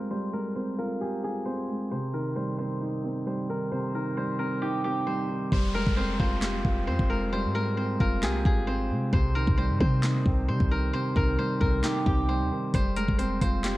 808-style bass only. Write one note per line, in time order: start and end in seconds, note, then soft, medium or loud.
5.52 5.85 F1 loud
5.87 6.18 F1 loud
6.20 6.63 F1 loud
6.65 6.89 F1 loud
6.87 6.99 F2 loud
6.99 7.46 F1 loud
7.44 7.97 G#2 loud
8.00 8.24 F1 loud
8.23 8.44 C2 loud
8.45 8.92 G#1 loud
8.90 9.12 C3 loud
9.13 9.46 C2 loud
9.48 9.71 C2 loud
9.70 9.80 G2 loud
9.81 10.24 C3 loud
10.26 10.50 C2 loud
10.48 10.60 C3 loud
10.60 10.92 C2 loud
11.16 11.38 C2 loud
11.61 11.83 C2 loud
12.06 12.42 C2 loud
12.41 12.51 D#2 loud
12.74 13.07 F1 loud
13.08 13.40 F1 loud
13.42 13.78 F1 loud